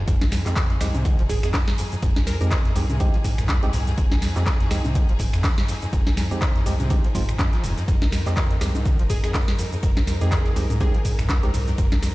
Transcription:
0.07 F1 F2 F3 D#4 G#4, kick, closed hi-hat, ride, shaker
0.21 C2 F2, snare, closed hi-hat, high conga
0.32 F2, snare, open hi-hat, ride, shaker
0.46 F2 G#3 C4 D#4 G4, snare, clap, closed hi-hat, shaker
0.56 F1, kick, snare, clap, closed hi-hat, ride, shaker
0.70 F2, snare, closed hi-hat
0.80 C2 F2 G#3 C4 D#4 G4, finger snap, snare, open hi-hat, ride, shaker
0.95 C3, closed hi-hat, mid tom, high conga, shaker
1.05 D#3, kick, closed hi-hat, ride, shaker
1.19 F1 F3, closed hi-hat
1.29 F1 G#4, kick, mid tom, open hi-hat, ride, shaker
1.43 F2 G#4, finger snap, snare, closed hi-hat, shaker
1.54 F2, kick, snare, clap, closed hi-hat, open hi-hat, high conga, shaker
1.68 F2, snare, closed hi-hat
1.78 F2, open hi-hat, ride, shaker
1.92 F2, closed hi-hat, shaker
2.02 F1 F2, kick, closed hi-hat, ride, shaker
2.16 C2 F2, snare, closed hi-hat, high conga
2.27 F2 A#4, snare, open hi-hat, ride, shaker
2.41 F2 G#3 C4 D#4 G4 A#4, closed hi-hat, shaker
2.51 F1, kick, snare, clap, closed hi-hat, ride, shaker
2.65 F2, snare, closed hi-hat
2.75 C2 F2 G#3 C4 D#4 G4, open hi-hat, ride, shaker
2.90 C3, closed hi-hat, mid tom, ride, high conga, shaker
3.00 D#3 G#3 C4 D#4 G4, kick, closed hi-hat, ride, shaker
3.14 F3, closed hi-hat
3.24 F1, kick, mid tom, open hi-hat, ride, shaker
3.38 C2 F2, finger snap, snare, closed hi-hat, mid tom, shaker
3.49 F2, kick, snare, clap, closed hi-hat, ride, high conga, shaker
3.63 F2 G#3 C4 D#4 G4, snare, closed hi-hat
3.73 F2, mid tom, open hi-hat, ride, shaker
3.87 F2, snare, closed hi-hat, shaker
3.97 F1 F2, kick, closed hi-hat, ride, shaker
4.12 C2 F2, snare, closed hi-hat, high conga
4.22 F2, snare, open hi-hat, ride, shaker
4.36 F2 G#3 C4 D#4 G4, snare, clap, closed hi-hat, shaker
4.46 F1, kick, snare, clap, closed hi-hat, ride, shaker
4.60 F2, snare, closed hi-hat
4.71 C2 F2 G#3 C4 D#4 G4, finger snap, snare, open hi-hat, ride, shaker
4.85 C3, closed hi-hat, mid tom, high conga, shaker
4.95 D#3, kick, closed hi-hat, ride, shaker
5.09 F1 F3, closed hi-hat
5.19 F1, kick, mid tom, open hi-hat, ride, shaker
5.33 F2, finger snap, snare, shaker
5.44 F2, kick, snare, clap, closed hi-hat, open hi-hat, high conga, shaker
5.58 F2, snare, closed hi-hat
5.68 F2, open hi-hat, ride, shaker
5.82 F2, closed hi-hat, shaker
5.93 F1 F2, kick, closed hi-hat, ride, shaker
6.07 C2 F2, snare, closed hi-hat, high conga
6.17 F2, snare, open hi-hat, ride, shaker
6.31 F2 G#3 C4 D#4 G4, closed hi-hat, shaker
6.42 F1, kick, snare, clap, closed hi-hat, ride, shaker
6.56 F2, snare, closed hi-hat
6.66 C2 F2 G#3 C4 D#4 G4, open hi-hat, ride, shaker
6.80 C3, closed hi-hat, mid tom, ride, high conga, shaker
6.90 D#3 G#3 C4 D#4 G4, kick, closed hi-hat, ride, shaker
7.04 F3, closed hi-hat, ride
7.15 F1 F3 G#3 C4 D#4 F4, kick, mid tom, open hi-hat, ride, shaker
7.29 F1, finger snap, closed hi-hat, mid tom, shaker
7.39 F2, kick, snare, clap, closed hi-hat, ride, high conga, shaker
7.53 F3, snare, closed hi-hat
7.64 F1 D#2, mid tom, open hi-hat, ride, shaker
7.77 F2, snare, closed hi-hat, shaker
7.88 F1 F2 A#4, kick, closed hi-hat, ride, shaker
8.02 C2 F2, snare, closed hi-hat, high conga
8.12 F2, snare, open hi-hat, ride, shaker
8.26 F2 G#3 C4 D#4 G4, snare, clap, closed hi-hat, shaker
8.36 F1, kick, snare, clap, closed hi-hat, ride, shaker
8.51 F2, snare, closed hi-hat
8.61 C2 F2 G#3 C4 D#4 G4, finger snap, snare, open hi-hat, ride, shaker
8.75 G#2, closed hi-hat, mid tom, high conga, shaker
8.85 D#3, kick, closed hi-hat, ride, shaker
8.99 F1 F3, closed hi-hat
9.09 F1 G#4, kick, mid tom, open hi-hat, ride, shaker
9.23 F2 G#4, finger snap, snare, closed hi-hat, shaker
9.34 F2, kick, snare, clap, closed hi-hat, open hi-hat, high conga, shaker
9.48 F2, snare, closed hi-hat
9.59 F2, open hi-hat, ride, shaker
9.72 F2, closed hi-hat, shaker
9.83 F1 F2, kick, closed hi-hat, ride, shaker
9.97 C2 F2, snare, closed hi-hat, high conga
10.07 F2, snare, open hi-hat, ride, shaker
10.21 F2 G#3 C4 D#4 G4 G#4, closed hi-hat, shaker
10.32 F1, kick, snare, clap, closed hi-hat, ride, shaker
10.45 F2, snare, closed hi-hat
10.56 C2 F2 G#3 C4 D#4 G4, open hi-hat, ride, shaker
10.70 G#2, closed hi-hat, mid tom, ride, high conga, shaker
10.80 D#3 G#3 C4 D#4 G4 G#4, kick, closed hi-hat, ride, shaker
10.94 F3, closed hi-hat
11.05 F1, kick, mid tom, open hi-hat, ride, shaker
11.19 C2 F2, finger snap, snare, mid tom, shaker
11.29 F2, kick, snare, clap, closed hi-hat, ride, high conga, shaker
11.43 F2 G#3 C4 D#4 G4, snare, closed hi-hat
11.54 F2, mid tom, open hi-hat, ride, shaker
11.68 F2, snare, closed hi-hat, shaker
11.78 F1 F2, kick, closed hi-hat, ride, shaker
11.92 C2 F2, snare, closed hi-hat, high conga
12.03 F2, snare, open hi-hat, ride, shaker

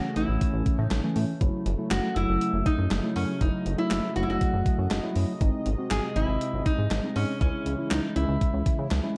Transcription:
Already playing: C#3 E3 A3 C#4 F#4
0.16 A1 E3 A3 C#4 E4, closed hi-hat
0.28 A1
0.41 kick, closed hi-hat
0.53 A1
0.66 kick, closed hi-hat
0.78 A2 D#4
0.91 A1, snare, clap, closed hi-hat
1.03 E3 A3 C#4
1.16 A2, open hi-hat
1.41 F#1 C#3 F#3 A3 E4, kick, closed hi-hat
1.66 F#1, closed hi-hat
1.79 F#3 A3 E4
1.91 F#1 F#4, snare, clap, closed hi-hat
2.16 F#1 F#3 A3 E4, closed hi-hat
2.29 F#1
2.41 closed hi-hat
2.53 F#1
2.66 D#4, kick, closed hi-hat
2.78 F#2
2.91 F#1, snare, clap, closed hi-hat
3.04 F#3 A3 E4
3.16 F#2 C#4, open hi-hat
3.41 F#1 F#3 A3 D#4 E4 D#5, kick, closed hi-hat
3.66 F#1, closed hi-hat
3.78 F#3 A3 E4
3.91 F#1, snare, clap, closed hi-hat
4.16 F#1 F#3 A3 E4 F#4, closed hi-hat
4.23 E4
4.28 F#1 F#4
4.41 kick, closed hi-hat
4.53 F#1
4.66 kick, closed hi-hat
4.78 F#2
4.91 F#1, snare, clap, closed hi-hat
5.04 F#3 A3 E4
5.16 F#2, open hi-hat
5.41 G#1 C3 G#3 C4 D#4, kick, closed hi-hat
5.66 G#1, closed hi-hat
5.78 G#3 C4 F#4
5.91 G#1 G#4, snare, clap, closed hi-hat
6.16 G#1 G#3 C4 E4 D#5, closed hi-hat
6.28 G#1
6.41 closed hi-hat
6.53 G#1
6.66 D#4, kick, closed hi-hat
6.79 G#2
6.91 G#1, snare, clap, closed hi-hat
7.03 G#3 C4 D#4
7.16 G#2 C#4, open hi-hat
7.41 C#2 C#3 E3 G#3 C#4 E4, kick, closed hi-hat
7.66 C#2, closed hi-hat
7.78 G#3 C#4 E4
7.91 C#2 D#4, snare, clap, closed hi-hat
8.16 C#2 G#3 C#4 E4, closed hi-hat
8.29 C#2
8.41 kick, closed hi-hat
8.54 C#2
8.66 kick, closed hi-hat
8.79 C#3
8.91 C#2, snare, clap, closed hi-hat
9.04 G#3 C#4 E4

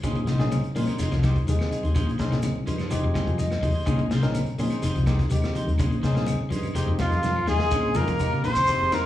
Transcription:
0.03 A#1 C#3 C4 C#4 D#4 G#4 C5, kick, closed hi-hat, low conga, claves, shekere
0.15 D#3, kick, closed hi-hat
0.27 C3 C#4 D#4 G#4 C5, snare, closed hi-hat, shekere
0.39 A#1 D#3 C4 C#4 D#4 G#4, snare, closed hi-hat
0.51 C#3, closed hi-hat, high conga, claves, shekere
0.63 muted fingered electric bass stroke, closed hi-hat
0.75 A#2 F3 C4 C#4 D#4 G#4 A#4 C5, open hi-hat, high conga, shekere
0.87 D#4 G#4 C5, closed hi-hat, low conga, claves
0.99 F1 D#3 D#4 G#4 C5, closed hi-hat, shekere
1.11 C2 F3, snare, closed hi-hat
1.22 G#3 C4 D#4 G4 G#4 C5, kick, snare, closed hi-hat, high conga, claves, shekere
1.36 kick, closed hi-hat
1.47 D#2 D#3 G#3 C4 D#4 G#4, closed hi-hat, high conga, shekere
1.59 snare, closed hi-hat, claves
1.71 D#4 G#4, muted fingered electric bass stroke, closed hi-hat, low conga, shekere
1.83 D#2 G#4 C5, closed hi-hat, high conga
1.95 A#1 C#4 D#4 G#4 C5, muted clean electric guitar stroke, kick, closed hi-hat, low conga, claves, shekere
2.07 D#3, closed hi-hat
2.18 C3 C4 C#4 D#4 G#4 C5, kick, snare, closed hi-hat, shekere
2.32 A#1 D#3, snare, closed hi-hat
2.42 C#3, closed hi-hat, high conga, claves, shekere
2.56 muted fingered electric bass stroke, high conga
2.66 G2 F3 C#4 D#4 G#4 C5, closed hi-hat, high conga, shekere
2.78 D#4 G#4 C5, snare, closed hi-hat, low conga, claves
2.89 F1 D#3 G#3 C4 D#4 G4 G#4 C5, closed hi-hat, shekere
3.04 F1 F3
3.14 D#4 G#4 C5 G#5, kick, snare, closed hi-hat, high conga, claves, shekere
3.27 F2, kick, closed hi-hat
3.39 D#3 D#5, closed hi-hat, high conga, shekere
3.50 snare, closed hi-hat, claves
3.62 D#2 F3 D#4 G#4 C5, kick, open hi-hat, low conga, shekere
3.74 G#4 C5
3.86 A#1 C#3 C4 C#4 D#4 G#4 C5, kick, closed hi-hat, low conga, claves, shekere
3.98 D#3, kick, closed hi-hat, high conga
4.10 C3 C#4 D#4 G#4 C5, snare, closed hi-hat, shekere
4.22 A#1 D#3 C4 C#4 D#4 A#4, snare, closed hi-hat
4.34 C#3, closed hi-hat, high conga, claves, shekere
4.46 muted fingered electric bass stroke, closed hi-hat
4.58 A#2 F3 C4 C#4 D#4 G#4 C5, open hi-hat, high conga, shekere
4.70 D#4 G#4 C5, closed hi-hat, claves
4.82 F1 D#3 D#4 G#4 C5, closed hi-hat, shekere
4.95 C2 F3, closed hi-hat
5.06 G#3 C4 D#4 G4 G#4 C5, kick, snare, closed hi-hat, high conga, claves, shekere
5.19 kick, snare, closed hi-hat
5.30 D#2 D#3 G#3 C4 D#4 G4, closed hi-hat, high conga, shekere
5.42 snare, closed hi-hat, claves
5.55 F3 D#4 C5, muted fingered electric bass stroke, muted clean electric guitar stroke, closed hi-hat, low conga, shekere
5.67 D#2, closed hi-hat, high conga
5.78 A#1 C#3 C#4 D#4 G#4 C5, kick, closed hi-hat, low conga, claves, shekere
5.91 D#3, closed hi-hat
6.02 C3 C4 C#4 D#4 G#4 C5, kick, snare, closed hi-hat, shekere
6.14 A#1 D#3, snare, closed hi-hat
6.27 C#3, closed hi-hat, high conga, claves, shekere
6.39 muted fingered electric bass stroke
6.50 G2 F3 C#4 D#4 G#4 C5, closed hi-hat, high conga, shekere
6.63 closed hi-hat, low conga, claves
6.74 F1 D#3 G#3 C4 D#4 G4 G#4 C5, closed hi-hat, shekere
6.87 F1 F3, high conga
6.98 F3 D#4 F4 G#4 C5 F5, kick, snare, closed hi-hat, high conga, claves, shekere
7.10 F2, snare, closed hi-hat
7.23 D#3, snare, high conga, shekere
7.36 claves
7.46 D#2 F3 G#3 D#4 G#4 C5 G#5, snare, low conga, shekere
7.58 G#4 C5, snare
7.70 A#1 D#3 C4 C#4 D#4 G#4 C5, kick, closed hi-hat, high conga, claves, shekere
7.94 F2 C#3 A#3 C#4 D#4 G#4 A#4 C5 A#5, snare, closed hi-hat, high conga, shekere
8.08 F3, kick, closed hi-hat, high conga, shekere
8.19 G#1 C4 C#4 D#4 G4, kick, snare, closed hi-hat, claves, shekere
8.33 C#3
8.43 A#1 D#3 C4 C#4 G#4 C5 C6, muted clean electric guitar stroke, open hi-hat, low conga, shekere
8.55 F3, kick, claves, shekere
8.67 G#3 C4 D#4 G4 G#4 C5, muted fingered electric bass stroke, kick, closed hi-hat, high conga, low conga, shekere
8.80 F1 G#4 C5
8.92 D#3 A#3 D#4 G#4 A#4 A#5, snare, closed hi-hat, high conga, claves, shekere

